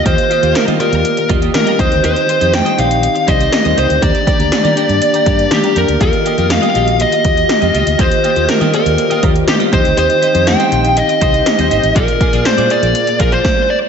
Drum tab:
HH |xxxxxxxxxxxxxxxx|xxxxxxxxxxxxxxxx|xxxxxxxxxxxxxxxx|xxxxxxxxxxxxxxxx|
SD |----o-------o---|----o-------o---|----o-------o---|----o-------o---|
BD |o---------o---o-|----------o-----|o-o-------o-----|o---------o-----|

HH |xxxxxxxxxxxxxxxx|xxxxxxxxxxxxxxxx|xxxxxxxxxxxx----|
SD |----o-------o---|----o-------o---|----o-------o---|
BD |o---------o---o-|----------o-----|o-o-------o-o---|